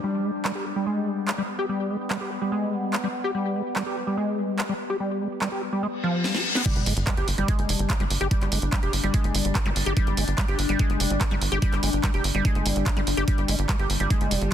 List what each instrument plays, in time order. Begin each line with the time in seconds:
Already playing: synth drone G3
0.04 acid bass G3, synth drone B3
0.24 acid bass G#3
0.45 acid bass G3, clap
0.55 acid bass G4
0.76 acid bass G3
0.86 acid bass G#3
1.07 acid bass G3
1.28 acid bass G#3, clap
1.38 acid bass G3
1.59 acid bass G4
1.69 acid bass G3
1.90 acid bass G#3
2.10 acid bass G3, clap
2.21 acid bass G4
2.42 acid bass G3
2.52 acid bass G#3
2.73 acid bass G3
2.93 acid bass G#3, clap
3.04 acid bass G3
3.24 acid bass G4
3.35 acid bass G3
3.55 acid bass G#3
3.76 acid bass G3, clap
3.86 acid bass G4
4.07 acid bass G3
4.17 acid bass G#3
4.38 acid bass G3
4.59 acid bass G#3, clap
4.69 acid bass G3
4.90 acid bass G4
5.00 acid bass G3
5.21 acid bass G#3
5.41 acid bass G3, clap
5.52 acid bass G4
5.73 acid bass G3
5.83 acid bass G#3, reverse cymbal
6.04 acid bass F3
6.24 acid bass G3, snare
6.35 acid bass G4, snare
6.55 acid bass B3, snare
6.66 acid bass G3, synth drone G3 D4, kick, closed hi-hat, crash, sub drop
6.76 analog synth bass G1, closed hi-hat
6.86 analog synth bass G1, acid bass G#3, open hi-hat
6.97 analog synth bass G1, closed hi-hat
7.07 acid bass G3, kick, clap, closed hi-hat
7.17 analog synth bass G1, acid bass G4, closed hi-hat
7.28 analog synth bass G1, open hi-hat
7.38 analog synth bass G1, acid bass G3, closed hi-hat
7.48 acid bass G#3, kick, closed hi-hat
7.59 analog synth bass G1, closed hi-hat
7.69 analog synth bass F1, acid bass G3, open hi-hat
7.79 analog synth bass G1, closed hi-hat
7.90 acid bass G#3, kick, clap, closed hi-hat
8.00 analog synth bass G1, acid bass G3, closed hi-hat
8.10 analog synth bass G1, open hi-hat
8.21 analog synth bass G1, acid bass G4, closed hi-hat
8.31 acid bass G3, kick, closed hi-hat
8.41 analog synth bass G1, clap, closed hi-hat
8.52 analog synth bass G1, acid bass G#3, open hi-hat
8.62 analog synth bass G1, closed hi-hat
8.72 acid bass G3, kick, clap, closed hi-hat
8.83 analog synth bass F1, acid bass G4, closed hi-hat
8.93 analog synth bass G1, open hi-hat
9.04 analog synth bass G1, acid bass G3, closed hi-hat
9.14 acid bass G#3, kick, closed hi-hat
9.24 analog synth bass G1, closed hi-hat
9.35 analog synth bass G1, acid bass G3, open hi-hat
9.45 analog synth bass G1, closed hi-hat
9.55 acid bass G#3, kick, clap, closed hi-hat
9.66 analog synth bass G1, acid bass G3, closed hi-hat, zap
9.76 analog synth bass G1, open hi-hat
9.86 analog synth bass G1, acid bass G4, closed hi-hat
9.97 acid bass G3, kick, closed hi-hat
10.07 analog synth bass G1, closed hi-hat
10.17 analog synth bass G1, acid bass G#3, open hi-hat
10.28 analog synth bass G1, closed hi-hat
10.38 acid bass G3, kick, clap, closed hi-hat
10.48 analog synth bass G1, acid bass G4, closed hi-hat
10.59 analog synth bass G1, open hi-hat
10.69 analog synth bass G1, acid bass G3, closed hi-hat
10.79 acid bass G#3, kick, closed hi-hat
10.90 analog synth bass G1, closed hi-hat
11.00 analog synth bass F1, acid bass G3, open hi-hat
11.10 analog synth bass G1, closed hi-hat
11.21 acid bass G#3, kick, clap, closed hi-hat
11.31 analog synth bass G1, acid bass G3, closed hi-hat
11.41 analog synth bass G1, open hi-hat
11.52 analog synth bass G1, acid bass G4, closed hi-hat
11.62 acid bass G3, kick, closed hi-hat
11.73 analog synth bass G1, clap, closed hi-hat
11.83 analog synth bass G1, acid bass G#3, open hi-hat
11.93 analog synth bass G1, closed hi-hat
12.04 acid bass G3, kick, clap, closed hi-hat
12.14 analog synth bass F1, acid bass G4, closed hi-hat
12.24 analog synth bass G1, open hi-hat
12.35 analog synth bass G1, acid bass G3, closed hi-hat
12.45 acid bass G#3, kick, closed hi-hat
12.55 analog synth bass G1, closed hi-hat
12.66 analog synth bass G1, acid bass G3, open hi-hat
12.76 analog synth bass G1, closed hi-hat
12.86 acid bass G#3, kick, clap, closed hi-hat
12.97 analog synth bass G1, acid bass G3, closed hi-hat
13.07 analog synth bass G1, open hi-hat
13.17 analog synth bass G1, acid bass G4, closed hi-hat
13.28 acid bass G3, synth drone F4, kick, closed hi-hat
13.38 analog synth bass G1, closed hi-hat
13.48 analog synth bass G1, acid bass G#3, open hi-hat
13.59 analog synth bass G1, closed hi-hat
13.69 acid bass G3, kick, clap, closed hi-hat
13.79 analog synth bass G1, acid bass G4, closed hi-hat
13.90 analog synth bass G1, open hi-hat
14.00 analog synth bass G1, acid bass G3, closed hi-hat
14.10 acid bass G#3, kick, closed hi-hat
14.21 analog synth bass G1, closed hi-hat
14.31 analog synth bass F1, acid bass G3, open hi-hat
14.42 analog synth bass G1, closed hi-hat